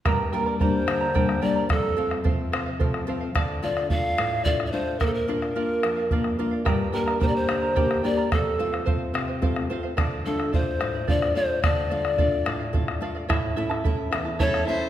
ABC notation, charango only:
X:1
M:6/8
L:1/16
Q:3/8=72
K:Dm
V:1 name="Charango"
[GBdgb]2 [Bdgb] [Bdb] [Bdgb]2 [Bdgb] [Bdb] [GBdgb]2 [Bdgb] [Bdb] | [Acf]2 [Acf] [cf] [Acf]2 [Acf] [cf] [Acf]2 [Acf] [cf] | [Adf]2 [Adf] [df] [Adf]2 [Adf] [df] [Adf]2 [Adf] [df] | [Bdf]2 [Bdf] [df] [Bdf]2 [Bdf] [df] [Bdf]2 [Bdf] [df] |
[GBdgb]2 [Bdgb] [Bdb] [Bdgb]2 [Bdgb] [Bdb] [GBdgb]2 [Bdgb] [Bdb] | [Acf]2 [Acf] [cf] [Acf]2 [Acf] [cf] [Acf]2 [Acf] [cf] | [Adf]2 [Adf] [df] [Adf]2 [Adf] [df] [Adf]2 [Adf] [df] | [Adf]2 [Adf] [df] [Adf]2 [Adf] [df] [Adf]2 [Adf] [df] |
[EA^cea]2 [EAea] [EAa] [EAea]2 [EAea] [EAa] [EAcea]2 [EAea] [EAa] |]